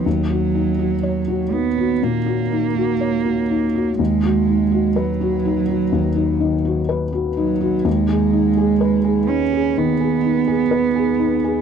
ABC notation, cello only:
X:1
M:4/4
L:1/8
Q:1/4=62
K:Ebm
V:1 name="Cello" clef=bass
G,3 C B,4 | A,2 ^F,4 z F, | A,3 D C4 |]